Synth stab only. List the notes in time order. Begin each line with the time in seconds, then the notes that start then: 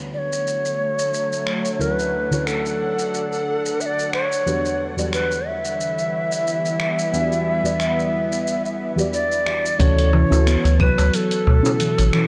Already playing: D3 E4 F#4 A4 C#5
1.79 D3 E4 F#4 A4 C#5
2.31 D3 E4 F#4 A4 C#5
4.46 E3 D4 F#4 G4 B4
4.97 E3 F#4 G4 B4 D5
7.12 E3 F#4 G4 B4 D5
7.63 E3 F#4 G4 B4 D5
8.96 E3 F#4 G4 B4
9.00 D5
9.79 C#4 E4 F#4 A4
10.30 C#4 E4 F#4 A4
11.63 C#4 E4 F#4
11.67 A4